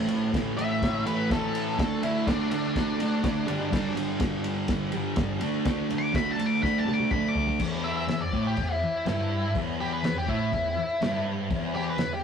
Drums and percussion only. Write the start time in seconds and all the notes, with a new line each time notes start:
0.08 ride
0.34 kick, snare, ride
0.59 ride
0.82 kick, snare, ride
1.06 ride
1.30 kick, snare, ride
1.55 ride
1.79 kick, snare, ride
2.03 ride
2.27 kick, snare, ride
2.51 ride
2.76 kick, snare, ride
3.00 ride
3.24 kick, snare, ride
3.48 ride
3.73 kick, snare, ride
3.97 ride
4.20 kick, snare, ride
4.44 ride
4.68 kick, snare, ride
4.92 ride
5.16 kick, snare, ride
5.41 ride
5.65 kick, snare, ride
5.90 ride
6.14 kick, snare, ride
6.39 ride
6.63 kick, snare
6.88 high tom
7.00 high tom
7.11 kick, mid tom
7.35 floor tom
7.47 floor tom
7.60 kick, crash
8.08 snare, crash
8.33 kick
8.57 kick, crash
9.06 snare, crash
9.55 kick, crash
10.04 snare, crash
10.28 kick
10.53 kick, crash
11.02 snare, crash
11.51 kick, crash
11.98 snare, crash